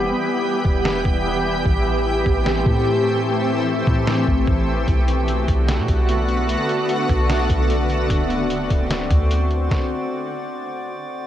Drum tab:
HH |--------|--------|--------|xxxxxxxx|
SD |----o---|----o---|----o---|----o---|
BD |---o-o--|o--o-o--|---o-oo-|o--o-o--|

HH |xxxxxxxx|xxxxxxxx|--------|
SD |----o---|----o---|o-------|
BD |---o-o--|o--o-o--|o-------|